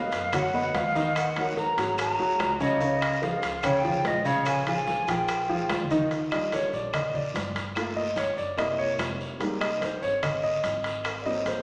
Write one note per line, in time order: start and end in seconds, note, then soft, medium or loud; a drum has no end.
0.00 0.26 B3 medium
0.00 0.26 B4 medium
0.00 0.26 D#5 medium
0.00 0.34 F5 medium
0.11 0.70 F#2 medium
0.11 high bongo soft
0.11 high conga soft
0.11 high timbale medium
0.11 short guiro medium
0.11 maracas medium
0.32 0.50 F#3 medium
0.32 0.50 F#4 medium
0.32 0.51 F#5 medium
0.32 0.76 F#5 loud
0.32 high bongo medium
0.32 high conga soft
0.32 low conga medium
0.32 high timbale medium
0.32 long guiro medium
0.32 claves medium
0.32 maracas medium
0.54 0.88 B3 medium
0.54 0.88 B4 medium
0.54 0.88 D#5 medium
0.54 high conga soft
0.54 maracas soft
0.74 1.72 D#2 medium
0.74 1.18 F5 loud
0.74 high bongo soft
0.74 low bongo medium
0.74 high conga medium
0.74 high timbale medium
0.74 low timbale medium
0.74 short guiro medium
0.74 maracas soft
0.95 1.29 D#3 medium
0.95 1.29 D#4 medium
0.95 1.29 D#5 medium
0.95 high bongo soft
0.95 short guiro medium
0.95 maracas medium
1.15 1.57 F#5 medium
1.15 high bongo medium
1.15 high conga soft
1.15 high timbale medium
1.15 long guiro medium
1.15 claves medium
1.15 maracas medium
1.36 1.71 F#3 medium
1.36 1.71 F#4 medium
1.36 1.71 A#4 medium
1.36 high bongo soft
1.36 high conga soft
1.36 high timbale medium
1.36 maracas soft
1.56 1.96 A#5 medium
1.56 high bongo medium
1.56 high conga medium
1.56 low timbale medium
1.56 short guiro medium
1.56 maracas soft
1.77 2.16 G#1 medium
1.77 2.12 F#3 medium
1.77 2.12 F#4 medium
1.77 2.12 G#4 medium
1.77 high bongo soft
1.77 high conga soft
1.77 high timbale medium
1.77 short guiro medium
1.77 maracas medium
1.97 2.63 A#5 loud
1.97 high bongo medium
1.97 high conga soft
1.97 high timbale medium
1.97 long guiro medium
1.97 claves medium
1.97 maracas medium
2.18 2.38 C2 medium
2.18 2.53 F#3 medium
2.18 2.53 F#4 medium
2.18 2.53 G#4 medium
2.18 high conga soft
2.18 maracas soft
2.39 3.37 C#2 loud
2.39 high bongo soft
2.39 low bongo medium
2.39 high timbale medium
2.39 low timbale medium
2.39 short guiro medium
2.39 claves medium
2.39 maracas soft
2.60 2.77 C#3 medium
2.60 2.77 C#4 loud
2.60 2.78 C#5 medium
2.60 3.25 D#5 medium
2.60 high bongo soft
2.60 high conga medium
2.60 short guiro medium
2.60 maracas medium
2.81 3.15 C#3 medium
2.81 3.16 C#4 medium
2.81 3.16 C#5 medium
2.81 high bongo medium
2.81 high conga soft
2.81 long guiro medium
2.81 maracas medium
3.01 high conga soft
3.01 high timbale loud
3.01 claves medium
3.01 maracas soft
3.22 3.57 F3 medium
3.22 3.57 F4 medium
3.22 3.57 G#4 medium
3.22 3.66 F5 medium
3.22 high bongo medium
3.22 high conga medium
3.22 low timbale soft
3.22 short guiro medium
3.22 maracas soft
3.42 4.01 C#2 medium
3.42 high bongo soft
3.42 high conga soft
3.42 high timbale medium
3.42 short guiro medium
3.42 maracas medium
3.63 3.81 C#3 medium
3.63 3.81 C#4 medium
3.63 3.81 C#5 medium
3.63 4.08 G5 medium
3.63 high bongo medium
3.63 high conga soft
3.63 low conga medium
3.63 high timbale medium
3.63 long guiro medium
3.63 claves medium
3.63 maracas medium
3.84 4.18 F3 medium
3.84 4.19 F4 medium
3.84 4.19 G#4 medium
3.84 high conga soft
3.84 low conga medium
3.84 maracas soft
4.04 5.02 A#1 medium
4.04 4.29 D#5 medium
4.04 high bongo soft
4.04 low bongo medium
4.04 high conga medium
4.04 high timbale medium
4.04 low timbale medium
4.04 short guiro medium
4.04 maracas soft
4.25 4.59 C#3 loud
4.25 4.59 C#4 loud
4.25 4.60 C#5 loud
4.25 4.50 F5 medium
4.25 high bongo soft
4.25 short guiro medium
4.25 maracas medium
4.45 4.67 G#5 medium
4.45 high bongo medium
4.45 high timbale medium
4.45 long guiro medium
4.45 claves medium
4.45 maracas medium
4.66 5.01 F3 medium
4.66 5.01 F4 medium
4.66 5.01 G#4 medium
4.66 5.11 G#5 medium
4.66 high bongo soft
4.66 high conga soft
4.66 high timbale medium
4.66 maracas soft
4.87 high bongo medium
4.87 high conga medium
4.87 low timbale medium
4.87 short guiro medium
4.87 maracas soft
5.07 5.46 A#1 medium
5.07 5.42 F3 medium
5.07 5.42 F4 medium
5.07 5.42 G#4 medium
5.07 5.71 G5 medium
5.07 high bongo soft
5.07 high timbale medium
5.07 short guiro medium
5.07 maracas medium
5.28 high bongo medium
5.28 high timbale medium
5.28 long guiro medium
5.28 claves medium
5.28 maracas medium
5.49 5.69 D2 medium
5.49 5.83 F3 medium
5.49 5.83 F4 medium
5.49 5.84 G#4 medium
5.49 high conga soft
5.49 maracas soft
5.69 6.67 D#2 medium
5.69 high bongo soft
5.69 low bongo medium
5.69 high conga medium
5.69 high timbale medium
5.69 low timbale medium
5.69 short guiro medium
5.69 claves medium
5.69 maracas soft
5.84 low conga medium
5.90 6.08 D#3 medium
5.90 6.08 D#4 medium
5.90 6.08 D#5 medium
5.90 high bongo soft
5.90 short guiro medium
5.90 maracas medium
5.98 low conga medium
6.11 high bongo medium
6.11 high conga soft
6.11 high timbale medium
6.11 long guiro medium
6.11 maracas medium
6.31 6.90 G3 soft
6.31 6.91 D4 soft
6.31 6.91 F4 medium
6.31 6.52 D#5 medium
6.31 high bongo soft
6.31 high conga soft
6.31 high timbale medium
6.31 claves medium
6.31 maracas soft
6.52 6.73 C#5 medium
6.52 high bongo medium
6.52 high conga medium
6.52 high timbale medium
6.52 short guiro medium
6.52 maracas medium
6.72 7.31 A#1 medium
6.72 6.93 D5 medium
6.72 high bongo soft
6.72 high conga soft
6.72 short guiro medium
6.72 maracas soft
6.93 7.14 D#5 medium
6.93 high bongo medium
6.93 high conga soft
6.93 low conga medium
6.93 high timbale medium
6.93 long guiro medium
6.93 claves medium
6.93 maracas medium
7.14 7.72 D5 medium
7.14 high conga soft
7.14 low conga medium
7.14 maracas soft
7.34 8.31 G1 medium
7.34 high bongo soft
7.34 low bongo medium
7.34 high conga medium
7.34 high timbale medium
7.34 low timbale medium
7.34 short guiro medium
7.34 maracas medium
7.55 high bongo soft
7.55 high conga medium
7.55 high timbale medium
7.55 short guiro medium
7.55 maracas soft
7.75 8.03 A3 medium
7.75 8.04 A#3 medium
7.75 8.04 F4 medium
7.75 high bongo medium
7.75 high timbale medium
7.75 long guiro medium
7.75 claves medium
7.75 maracas medium
7.96 8.16 D#5 medium
7.96 high bongo soft
7.96 high conga soft
7.96 maracas soft
8.16 8.37 C#5 medium
8.16 high bongo medium
8.16 high conga medium
8.16 high timbale medium
8.16 short guiro medium
8.16 maracas medium
8.37 8.95 F#1 medium
8.37 8.57 D5 medium
8.37 high bongo soft
8.37 high conga soft
8.37 short guiro medium
8.37 maracas soft
8.57 9.36 C3 soft
8.57 9.36 A#3 soft
8.57 9.37 E4 medium
8.57 8.78 D#5 medium
8.57 high bongo medium
8.57 high conga soft
8.57 high timbale medium
8.57 long guiro medium
8.57 claves medium
8.57 maracas medium
8.78 9.36 C#5 medium
8.78 high conga soft
8.78 maracas soft
8.98 9.95 F1 medium
8.98 high bongo soft
8.98 low bongo medium
8.98 high conga medium
8.98 high timbale medium
8.98 low timbale medium
8.98 short guiro medium
8.98 claves medium
8.98 maracas medium
9.20 high bongo soft
9.20 high conga soft
9.20 short guiro medium
9.20 maracas soft
9.40 9.68 G3 medium
9.40 9.68 G#3 soft
9.40 9.68 A#3 medium
9.40 9.68 D#4 medium
9.40 high bongo medium
9.40 high conga soft
9.40 high timbale medium
9.40 long guiro medium
9.40 maracas medium
9.61 9.81 D#5 medium
9.61 high bongo soft
9.61 high timbale medium
9.61 claves medium
9.61 maracas soft
9.77 9.80 B4 soft
9.77 high conga medium
9.82 10.02 C5 medium
9.82 high bongo medium
9.82 high timbale medium
9.82 short guiro medium
9.82 maracas medium
10.02 10.60 G#1 medium
10.02 10.22 C#5 medium
10.02 high bongo soft
10.02 high conga soft
10.02 short guiro medium
10.02 maracas soft
10.23 10.42 D#5 medium
10.23 high bongo medium
10.23 high conga soft
10.23 low conga medium
10.23 high timbale loud
10.23 long guiro medium
10.23 claves medium
10.23 maracas medium
10.43 11.01 D#5 medium
10.43 high conga soft
10.43 maracas soft
10.64 11.61 G#1 medium
10.64 high bongo soft
10.64 low bongo medium
10.64 high conga medium
10.64 high timbale medium
10.64 short guiro medium
10.64 maracas medium
10.84 high bongo soft
10.84 high timbale medium
10.84 short guiro medium
10.84 maracas soft
11.04 high bongo medium
11.04 high conga soft
11.04 high timbale medium
11.04 long guiro medium
11.04 claves medium
11.04 maracas medium
11.21 11.62 F#3 soft
11.21 11.24 D5 soft
11.21 high conga soft
11.26 11.62 A#3 soft
11.26 11.62 C4 medium
11.26 11.46 D#5 medium
11.26 high bongo soft
11.26 maracas soft
11.46 11.62 C5 medium
11.46 high bongo medium
11.46 high conga medium
11.46 high timbale medium
11.46 short guiro medium
11.46 maracas medium